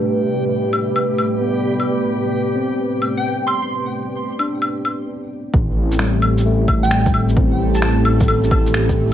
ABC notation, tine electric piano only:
X:1
M:4/4
L:1/8
Q:"Swing 16ths" 1/4=131
K:Am
V:1 name="Tine electric piano"
[A,D]4- [A,D] z B,2- | B,3 C4- C- | C2 z D3 z2 | z2 [G,A,]2 A,2 G,2 |
C4 A4 |]